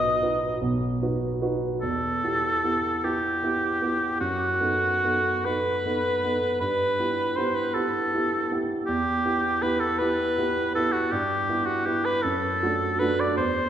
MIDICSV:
0, 0, Header, 1, 3, 480
1, 0, Start_track
1, 0, Key_signature, 1, "minor"
1, 0, Tempo, 802139
1, 1088, Time_signature, 6, 3, 24, 8
1, 2054, Tempo, 769231
1, 2534, Tempo, 821918
1, 3494, Tempo, 762389
1, 4934, Tempo, 749064
1, 8497, End_track
2, 0, Start_track
2, 0, Title_t, "Oboe"
2, 0, Program_c, 0, 68
2, 0, Note_on_c, 0, 75, 86
2, 359, Note_off_c, 0, 75, 0
2, 1085, Note_on_c, 0, 69, 78
2, 1820, Note_on_c, 0, 67, 62
2, 1829, Note_off_c, 0, 69, 0
2, 2532, Note_off_c, 0, 67, 0
2, 2535, Note_on_c, 0, 66, 75
2, 3263, Note_on_c, 0, 71, 69
2, 3272, Note_off_c, 0, 66, 0
2, 3970, Note_off_c, 0, 71, 0
2, 3974, Note_on_c, 0, 71, 69
2, 4450, Note_on_c, 0, 72, 64
2, 4460, Note_off_c, 0, 71, 0
2, 4568, Note_on_c, 0, 71, 68
2, 4578, Note_off_c, 0, 72, 0
2, 4686, Note_on_c, 0, 69, 67
2, 4695, Note_off_c, 0, 71, 0
2, 5241, Note_off_c, 0, 69, 0
2, 5402, Note_on_c, 0, 67, 76
2, 5887, Note_on_c, 0, 71, 72
2, 5896, Note_off_c, 0, 67, 0
2, 6002, Note_on_c, 0, 69, 70
2, 6011, Note_off_c, 0, 71, 0
2, 6121, Note_on_c, 0, 71, 71
2, 6131, Note_off_c, 0, 69, 0
2, 6605, Note_off_c, 0, 71, 0
2, 6611, Note_on_c, 0, 69, 77
2, 6721, Note_on_c, 0, 66, 64
2, 6730, Note_off_c, 0, 69, 0
2, 6851, Note_on_c, 0, 67, 76
2, 6860, Note_off_c, 0, 66, 0
2, 7196, Note_on_c, 0, 66, 64
2, 7206, Note_off_c, 0, 67, 0
2, 7322, Note_on_c, 0, 67, 72
2, 7332, Note_off_c, 0, 66, 0
2, 7445, Note_on_c, 0, 71, 77
2, 7454, Note_off_c, 0, 67, 0
2, 7557, Note_on_c, 0, 69, 74
2, 7567, Note_off_c, 0, 71, 0
2, 8049, Note_on_c, 0, 71, 78
2, 8058, Note_off_c, 0, 69, 0
2, 8182, Note_on_c, 0, 74, 74
2, 8191, Note_off_c, 0, 71, 0
2, 8289, Note_off_c, 0, 74, 0
2, 8292, Note_on_c, 0, 72, 83
2, 8497, Note_off_c, 0, 72, 0
2, 8497, End_track
3, 0, Start_track
3, 0, Title_t, "Grand piano"
3, 0, Program_c, 1, 0
3, 0, Control_c, 1, 64, 127
3, 0, Note_on_c, 1, 35, 53
3, 0, Note_on_c, 1, 47, 50
3, 0, Note_on_c, 1, 63, 38
3, 0, Note_on_c, 1, 66, 41
3, 0, Note_on_c, 1, 71, 44
3, 111, Note_off_c, 1, 63, 0
3, 111, Note_off_c, 1, 66, 0
3, 115, Note_off_c, 1, 71, 0
3, 135, Note_on_c, 1, 63, 41
3, 137, Note_on_c, 1, 66, 40
3, 137, Note_on_c, 1, 71, 47
3, 349, Note_off_c, 1, 63, 0
3, 350, Note_off_c, 1, 66, 0
3, 350, Note_off_c, 1, 71, 0
3, 371, Note_off_c, 1, 35, 0
3, 371, Note_off_c, 1, 47, 0
3, 371, Note_on_c, 1, 35, 50
3, 371, Note_on_c, 1, 47, 52
3, 602, Note_off_c, 1, 35, 0
3, 602, Note_off_c, 1, 47, 0
3, 613, Note_on_c, 1, 63, 43
3, 613, Note_on_c, 1, 66, 41
3, 616, Note_on_c, 1, 71, 47
3, 827, Note_off_c, 1, 63, 0
3, 827, Note_off_c, 1, 66, 0
3, 828, Note_off_c, 1, 71, 0
3, 848, Note_on_c, 1, 63, 44
3, 850, Note_on_c, 1, 66, 47
3, 854, Note_on_c, 1, 71, 45
3, 1064, Note_off_c, 1, 63, 0
3, 1065, Note_off_c, 1, 66, 0
3, 1067, Note_off_c, 1, 71, 0
3, 1092, Note_on_c, 1, 40, 46
3, 1098, Control_c, 1, 64, 0
3, 1213, Control_c, 1, 64, 127
3, 1325, Note_off_c, 1, 40, 0
3, 1339, Note_on_c, 1, 59, 30
3, 1339, Note_on_c, 1, 64, 33
3, 1345, Note_on_c, 1, 67, 38
3, 1555, Note_off_c, 1, 59, 0
3, 1555, Note_off_c, 1, 64, 0
3, 1559, Note_off_c, 1, 67, 0
3, 1578, Note_on_c, 1, 59, 36
3, 1578, Note_on_c, 1, 64, 34
3, 1582, Note_on_c, 1, 67, 34
3, 1795, Note_off_c, 1, 59, 0
3, 1795, Note_off_c, 1, 64, 0
3, 1797, Note_off_c, 1, 67, 0
3, 1818, Note_on_c, 1, 59, 36
3, 1819, Note_on_c, 1, 64, 32
3, 1822, Note_on_c, 1, 67, 38
3, 2031, Note_off_c, 1, 59, 0
3, 2032, Note_off_c, 1, 64, 0
3, 2033, Note_off_c, 1, 67, 0
3, 2053, Note_on_c, 1, 59, 36
3, 2057, Note_on_c, 1, 67, 39
3, 2058, Note_on_c, 1, 64, 36
3, 2271, Note_off_c, 1, 59, 0
3, 2273, Note_off_c, 1, 64, 0
3, 2273, Note_off_c, 1, 67, 0
3, 2296, Note_on_c, 1, 59, 38
3, 2301, Note_on_c, 1, 64, 35
3, 2302, Note_on_c, 1, 67, 42
3, 2511, Note_off_c, 1, 59, 0
3, 2514, Note_off_c, 1, 64, 0
3, 2514, Note_off_c, 1, 67, 0
3, 2536, Note_on_c, 1, 42, 43
3, 2546, Control_c, 1, 64, 0
3, 2651, Control_c, 1, 64, 127
3, 2762, Note_off_c, 1, 42, 0
3, 2771, Note_on_c, 1, 59, 33
3, 2776, Note_on_c, 1, 63, 34
3, 2776, Note_on_c, 1, 69, 36
3, 2993, Note_off_c, 1, 59, 0
3, 2996, Note_off_c, 1, 63, 0
3, 2996, Note_off_c, 1, 69, 0
3, 3023, Note_on_c, 1, 59, 33
3, 3024, Note_on_c, 1, 63, 33
3, 3026, Note_on_c, 1, 69, 38
3, 3242, Note_off_c, 1, 59, 0
3, 3242, Note_off_c, 1, 63, 0
3, 3243, Note_off_c, 1, 69, 0
3, 3266, Note_on_c, 1, 59, 35
3, 3271, Note_on_c, 1, 63, 34
3, 3271, Note_on_c, 1, 69, 35
3, 3473, Note_off_c, 1, 59, 0
3, 3476, Note_off_c, 1, 63, 0
3, 3476, Note_off_c, 1, 69, 0
3, 3502, Note_on_c, 1, 59, 37
3, 3502, Note_on_c, 1, 63, 36
3, 3505, Note_on_c, 1, 69, 43
3, 3714, Note_off_c, 1, 59, 0
3, 3715, Note_off_c, 1, 63, 0
3, 3716, Note_off_c, 1, 69, 0
3, 3740, Note_on_c, 1, 59, 38
3, 3741, Note_on_c, 1, 63, 35
3, 3746, Note_on_c, 1, 69, 38
3, 3951, Note_off_c, 1, 59, 0
3, 3951, Note_off_c, 1, 63, 0
3, 3954, Note_off_c, 1, 69, 0
3, 3974, Note_on_c, 1, 43, 40
3, 3983, Control_c, 1, 64, 0
3, 4095, Control_c, 1, 64, 127
3, 4203, Note_off_c, 1, 43, 0
3, 4215, Note_on_c, 1, 59, 30
3, 4219, Note_on_c, 1, 64, 34
3, 4220, Note_on_c, 1, 67, 36
3, 4428, Note_off_c, 1, 59, 0
3, 4430, Note_off_c, 1, 64, 0
3, 4431, Note_off_c, 1, 67, 0
3, 4454, Note_on_c, 1, 59, 36
3, 4457, Note_on_c, 1, 64, 37
3, 4461, Note_on_c, 1, 67, 39
3, 4671, Note_off_c, 1, 59, 0
3, 4672, Note_off_c, 1, 64, 0
3, 4674, Note_off_c, 1, 67, 0
3, 4694, Note_on_c, 1, 59, 38
3, 4695, Note_on_c, 1, 67, 40
3, 4696, Note_on_c, 1, 64, 36
3, 4911, Note_off_c, 1, 59, 0
3, 4912, Note_off_c, 1, 64, 0
3, 4912, Note_off_c, 1, 67, 0
3, 4940, Note_on_c, 1, 59, 40
3, 4941, Note_on_c, 1, 64, 40
3, 4943, Note_on_c, 1, 67, 40
3, 5155, Note_off_c, 1, 59, 0
3, 5156, Note_off_c, 1, 64, 0
3, 5157, Note_off_c, 1, 67, 0
3, 5176, Note_on_c, 1, 59, 37
3, 5180, Note_on_c, 1, 64, 41
3, 5182, Note_on_c, 1, 67, 44
3, 5390, Note_off_c, 1, 59, 0
3, 5392, Note_off_c, 1, 64, 0
3, 5393, Note_off_c, 1, 67, 0
3, 5415, Note_on_c, 1, 40, 47
3, 5425, Control_c, 1, 64, 0
3, 5533, Control_c, 1, 64, 127
3, 5646, Note_off_c, 1, 40, 0
3, 5651, Note_on_c, 1, 59, 34
3, 5653, Note_on_c, 1, 64, 36
3, 5654, Note_on_c, 1, 67, 37
3, 5868, Note_off_c, 1, 59, 0
3, 5869, Note_off_c, 1, 64, 0
3, 5869, Note_off_c, 1, 67, 0
3, 5891, Note_on_c, 1, 59, 37
3, 5895, Note_on_c, 1, 64, 39
3, 5897, Note_on_c, 1, 67, 40
3, 6108, Note_off_c, 1, 59, 0
3, 6110, Note_off_c, 1, 64, 0
3, 6111, Note_off_c, 1, 67, 0
3, 6134, Note_on_c, 1, 59, 39
3, 6137, Note_on_c, 1, 64, 38
3, 6140, Note_on_c, 1, 67, 42
3, 6349, Note_off_c, 1, 59, 0
3, 6351, Note_off_c, 1, 64, 0
3, 6352, Note_off_c, 1, 67, 0
3, 6375, Note_on_c, 1, 59, 43
3, 6376, Note_on_c, 1, 64, 42
3, 6381, Note_on_c, 1, 67, 43
3, 6588, Note_off_c, 1, 59, 0
3, 6588, Note_off_c, 1, 64, 0
3, 6591, Note_off_c, 1, 67, 0
3, 6616, Note_on_c, 1, 59, 42
3, 6619, Note_on_c, 1, 64, 39
3, 6621, Note_on_c, 1, 67, 49
3, 6825, Note_off_c, 1, 59, 0
3, 6826, Note_off_c, 1, 64, 0
3, 6828, Note_off_c, 1, 67, 0
3, 6849, Note_on_c, 1, 43, 48
3, 6854, Control_c, 1, 64, 0
3, 6958, Control_c, 1, 64, 127
3, 7075, Note_off_c, 1, 43, 0
3, 7087, Note_on_c, 1, 59, 36
3, 7087, Note_on_c, 1, 64, 42
3, 7299, Note_off_c, 1, 59, 0
3, 7299, Note_off_c, 1, 64, 0
3, 7324, Note_on_c, 1, 59, 38
3, 7329, Note_on_c, 1, 64, 41
3, 7540, Note_off_c, 1, 59, 0
3, 7543, Note_off_c, 1, 64, 0
3, 7568, Note_on_c, 1, 42, 52
3, 7573, Control_c, 1, 64, 0
3, 7663, Control_c, 1, 64, 127
3, 7800, Note_off_c, 1, 42, 0
3, 7812, Note_on_c, 1, 57, 38
3, 7814, Note_on_c, 1, 66, 45
3, 7815, Note_on_c, 1, 62, 39
3, 8027, Note_off_c, 1, 57, 0
3, 8028, Note_off_c, 1, 66, 0
3, 8029, Note_off_c, 1, 62, 0
3, 8052, Note_on_c, 1, 57, 40
3, 8055, Note_on_c, 1, 62, 43
3, 8061, Note_on_c, 1, 66, 46
3, 8268, Note_off_c, 1, 57, 0
3, 8270, Note_off_c, 1, 62, 0
3, 8273, Note_off_c, 1, 66, 0
3, 8291, Note_on_c, 1, 40, 44
3, 8300, Control_c, 1, 64, 0
3, 8419, Control_c, 1, 64, 127
3, 8497, Note_off_c, 1, 40, 0
3, 8497, End_track
0, 0, End_of_file